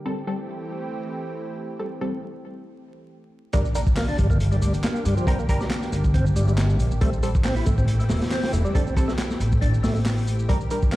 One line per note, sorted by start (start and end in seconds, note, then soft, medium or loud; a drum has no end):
0.05 3.07 E3 medium
0.05 0.12 G3 medium
0.05 3.07 A3 medium
0.05 3.07 C4 medium
0.05 0.12 C4 medium
0.05 3.07 G4 medium
0.05 0.12 A4 loud
0.27 0.34 G3 medium
0.27 0.34 C4 medium
0.27 0.34 A4 medium
1.79 1.86 G3 medium
1.79 1.86 C4 medium
1.79 1.86 A4 medium
2.01 2.12 G3 loud
2.01 2.12 C4 medium
2.01 2.12 A4 loud
3.53 6.98 D3 medium
3.53 3.62 G3 loud
3.53 3.60 G3 medium
3.53 6.98 G3 medium
3.53 6.98 A#3 medium
3.53 3.60 D4 medium
3.53 6.98 G4 medium
3.53 3.60 A#4 loud
3.53 kick loud
3.53 closed hi-hat medium
3.53 impact medium
3.53 shaker soft
3.65 shaker soft
3.75 3.82 G3 medium
3.75 3.82 D4 medium
3.75 3.82 A#4 loud
3.75 closed hi-hat medium
3.75 shaker medium
3.87 kick loud
3.87 shaker soft
3.96 4.07 A#3 loud
3.96 snare loud
3.96 clap loud
3.96 open hi-hat medium
3.96 shaker soft
4.08 4.18 D4 medium
4.08 shaker soft
4.18 4.59 G1 loud
4.18 4.27 G3 loud
4.18 kick loud
4.18 closed hi-hat medium
4.18 shaker medium
4.30 4.38 A#3 medium
4.30 kick loud
4.30 shaker soft
4.40 closed hi-hat loud
4.40 shaker soft
4.52 4.56 G3 loud
4.52 closed hi-hat soft
4.52 shaker soft
4.62 4.71 D2 loud
4.62 4.73 G3 medium
4.62 closed hi-hat medium
4.62 shaker medium
4.74 closed hi-hat soft
4.74 shaker soft
4.84 5.04 A#3 loud
4.84 snare loud
4.84 clap loud
4.84 closed hi-hat medium
4.84 shaker soft
4.96 shaker soft
5.05 5.15 G2 loud
5.05 5.15 G3 loud
5.05 closed hi-hat medium
5.05 shaker medium
5.17 5.26 F3 medium
5.17 shaker soft
5.27 5.34 G3 medium
5.27 5.38 C4 loud
5.27 5.34 D4 medium
5.27 5.34 A#4 loud
5.27 kick loud
5.27 closed hi-hat medium
5.27 shaker soft
5.39 5.47 A#3 medium
5.39 shaker soft
5.49 5.59 G3 loud
5.49 5.59 D4 loud
5.49 5.59 A#4 loud
5.49 kick medium
5.49 closed hi-hat medium
5.49 shaker medium
5.61 5.65 G3 loud
5.61 snare medium
5.61 shaker soft
5.70 snare loud
5.70 clap loud
5.70 closed hi-hat medium
5.70 shaker soft
5.82 snare medium
5.82 shaker soft
5.93 6.33 G1 loud
5.93 closed hi-hat medium
5.93 shaker medium
6.04 kick loud
6.04 shaker soft
6.14 6.25 C4 loud
6.14 kick loud
6.14 closed hi-hat medium
6.14 shaker soft
6.26 shaker soft
6.36 6.79 G1 loud
6.36 6.47 G3 loud
6.36 closed hi-hat medium
6.36 shaker medium
6.48 6.53 G3 loud
6.48 shaker soft
6.58 snare loud
6.58 clap loud
6.58 closed hi-hat loud
6.58 shaker soft
6.70 shaker soft
6.79 6.89 A#1 medium
6.79 closed hi-hat medium
6.79 shaker medium
6.91 7.63 A1 medium
6.91 shaker soft
7.01 10.46 E3 medium
7.01 7.08 G3 loud
7.01 7.10 A3 loud
7.01 10.46 A3 medium
7.01 7.08 C4 medium
7.01 10.46 C4 medium
7.01 10.96 G4 medium
7.01 7.08 A4 loud
7.01 kick loud
7.01 closed hi-hat loud
7.01 shaker soft
7.13 shaker soft
7.23 7.29 G3 medium
7.23 7.29 C4 medium
7.23 7.29 A4 loud
7.23 closed hi-hat medium
7.23 shaker medium
7.35 kick loud
7.35 shaker soft
7.45 7.55 C4 loud
7.45 snare loud
7.45 clap loud
7.45 open hi-hat medium
7.45 shaker soft
7.56 7.66 E4 medium
7.56 shaker soft
7.66 8.07 A1 loud
7.66 7.75 A3 loud
7.66 kick loud
7.66 closed hi-hat medium
7.66 shaker medium
7.78 7.86 C4 medium
7.78 kick medium
7.78 shaker soft
7.88 closed hi-hat loud
7.88 shaker soft
7.99 8.04 A3 loud
7.99 closed hi-hat soft
7.99 shaker soft
8.09 8.19 E1 loud
8.09 8.21 A3 medium
8.09 snare loud
8.09 open hi-hat medium
8.09 shaker medium
8.21 snare loud
8.21 open hi-hat medium
8.21 shaker soft
8.31 8.52 C4 loud
8.31 snare loud
8.31 clap loud
8.31 open hi-hat medium
8.31 shaker soft
8.43 snare loud
8.43 open hi-hat medium
8.43 shaker soft
8.53 8.63 E1 loud
8.53 8.62 A3 loud
8.53 closed hi-hat medium
8.53 shaker medium
8.65 8.74 G3 medium
8.65 shaker soft
8.75 8.81 G3 medium
8.75 8.82 C4 medium
8.75 8.86 D4 loud
8.75 8.82 A4 loud
8.75 kick loud
8.75 closed hi-hat medium
8.75 shaker soft
8.86 8.94 C4 medium
8.86 shaker soft
8.97 9.07 G3 loud
8.97 9.07 C4 medium
8.97 9.07 A4 loud
8.97 kick loud
8.97 closed hi-hat medium
8.97 shaker medium
9.08 9.13 A3 loud
9.08 snare medium
9.08 shaker soft
9.18 snare loud
9.18 clap loud
9.18 closed hi-hat medium
9.18 shaker soft
9.31 snare medium
9.31 shaker soft
9.40 9.80 A1 loud
9.40 closed hi-hat medium
9.40 shaker medium
9.52 kick medium
9.52 shaker soft
9.61 9.73 D4 loud
9.61 kick loud
9.61 closed hi-hat medium
9.61 shaker soft
9.74 shaker soft
9.83 10.46 A1 loud
9.83 9.94 A3 medium
9.83 snare loud
9.83 open hi-hat medium
9.83 shaker medium
9.95 10.00 A3 loud
9.95 shaker soft
10.05 snare loud
10.05 clap loud
10.05 open hi-hat medium
10.05 shaker soft
10.18 shaker soft
10.28 closed hi-hat medium
10.28 shaker medium
10.39 shaker soft
10.49 10.96 D3 medium
10.49 10.58 G3 loud
10.49 10.55 G3 loud
10.49 10.96 G3 medium
10.49 10.96 A#3 medium
10.49 10.55 D4 medium
10.49 10.55 A#4 loud
10.49 kick loud
10.49 closed hi-hat loud
10.49 shaker soft
10.61 shaker soft
10.71 10.77 G3 loud
10.71 10.77 D4 medium
10.71 10.77 A#4 loud
10.71 closed hi-hat medium
10.71 shaker medium
10.82 kick loud
10.82 shaker soft
10.92 10.96 A#3 loud
10.92 clap loud
10.92 open hi-hat medium
10.92 shaker soft